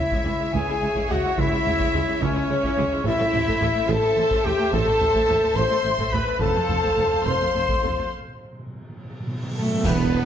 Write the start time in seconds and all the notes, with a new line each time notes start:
Already playing: E4 C#5 E5
0.11 C#2 G#3 E4, taiko
0.25 C#2 G#3 E4, taiko low
0.40 C#2 G#3 E4
0.53 C#2 G#3 E4 G#4 G#5, taiko
0.68 C#2 G#3 E4
0.81 C#2 G#3 E4
0.95 C#2 G#3 E4, taiko
1.09 C#2 G#3 E4 F#4 F#5, taiko low
1.24 C#2 G#3 E4
1.36 C#2 G#3 E4 E5, taiko
1.52 C#2 G#3 E4
1.64 C#2 G#3 E4, taiko low
1.79 C#2 G#3 E4, taiko
1.92 C#2 G#3 E4, taiko low
2.08 C#2 G#3 E4
2.20 C#2 G#3 C#4 E4 C#5, taiko
2.35 C#2 G#3 E4
2.49 C#2 G#3 E4
2.63 C#2 G#3 E4, taiko
2.75 C#2 G#3 E4, taiko low
2.91 C#2 G#3 E4
3.04 A1 A2 A3 E4 A4 C5 E5, taiko
3.19 A2 A3 A4
3.32 A1 A2 A3 A4, taiko low
3.46 A2 A3 A4, taiko
3.60 A1 A2 A3 A4, taiko low
3.74 A2 A3 A4
3.89 A1 A2 A3 A4 A5, taiko
4.03 A2 A3 A4
4.16 A1 A2 A3 A4
4.30 A2 A3 A4, taiko
4.44 A1 A2 A3 G4 A4 G5, taiko low
4.58 A2 A3 A4
4.72 A1 A2 A3 A4 A5, taiko
4.86 A2 A3 A4
5.00 A1 A2 A3 A4, taiko low
5.14 A2 A3 A4, taiko
5.28 A1 A2 A3 A4, taiko low
5.42 A2 A3 A4
5.54 A1 A2 A3 A4 C5 C6, taiko
5.70 A2 A3 A4
5.84 A1 A2 A3 A4
5.98 A2 A3 A4, taiko
6.11 A1 A2 A3 A4 B4 B5, taiko low
6.27 A2 A3 A4
6.40 F1 F2 A3 A4 C5 F5 A5, taiko
6.55 F2 A3 A4
6.69 F1 F2 A3 A4, taiko low
6.83 F2 A3 A4, taiko
6.97 F1 F2 A3 A4, taiko low
7.11 F2 A3 A4
7.24 F1 F2 A3 A4 C5 C6, taiko
7.40 F2 A3 A4
7.54 F1 F2 A3 A4
7.69 F2 A3 A4, taiko
7.83 F1 F2 A3 A4, taiko low
7.97 F2 A3 A4
8.11 B2, cymbal swell
8.21 B2
8.28 B2
8.37 B2
8.44 B2
8.53 B2
8.59 B2
8.66 B2
8.74 B2
8.82 B2
8.89 B2
8.97 B2
9.05 B2
9.11 B2
9.20 B2
9.27 B2
9.36 B2
9.43 B2
9.51 B2
9.56 B2 A3 A4
9.66 B2
9.73 B2
9.84 E1 E2 B3 G4 B4 E5, concert bass drum, taiko, crash, impact
10.12 G4 E5